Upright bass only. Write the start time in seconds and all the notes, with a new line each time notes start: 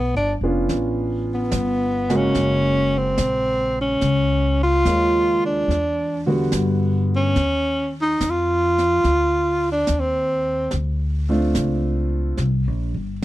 Already playing: B1
0.14 G1
0.41 F1
0.69 A1
1.52 G1
2.35 F#1
3.19 A#1
4.02 C#2
4.85 D#2
5.68 E2
6.53 G2
7.36 D#2
8.20 F2
9.04 D2
9.89 D#2
10.73 D2
11.55 C#2
12.39 C2
12.67 A#1
12.94 G1